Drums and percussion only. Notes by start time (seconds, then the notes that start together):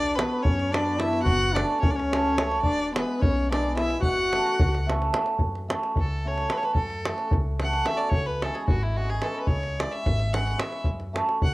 0.19 davul high
0.45 davul low
0.59 davul high
0.74 davul high
1.00 davul high
1.13 davul high
1.26 davul low
1.56 davul high
1.83 davul low
1.99 davul high
2.13 davul high
2.38 davul high
2.51 davul high
2.63 davul low
2.96 davul high
3.22 davul low
3.52 davul high
3.77 davul high
3.90 davul high
4.02 davul low
4.17 davul high
4.33 davul high
4.47 davul high
4.60 davul low
4.75 davul high
4.90 davul high
5.02 davul high
5.14 davul high
5.26 davul high
5.39 davul low
5.55 davul high
5.70 davul high
5.83 davul high
5.96 davul low
6.38 davul high
6.50 davul high
6.63 davul high
6.75 davul low
6.90 davul high
7.05 davul high
7.18 davul high
7.31 davul low
7.60 davul high
7.73 davul high
7.86 davul high
7.99 davul high
8.12 davul low
8.27 davul high
8.42 davul high
8.55 davul high
8.68 davul low
9.10 davul high
9.22 davul high
9.35 davul high
9.47 davul low
9.63 davul high
9.80 davul high
9.93 davul high
10.06 davul low
10.19 davul high
10.34 davul high
10.47 davul high
10.60 davul high
10.72 davul high
10.84 davul low
11.00 davul high
11.16 davul high
11.29 davul high
11.42 davul low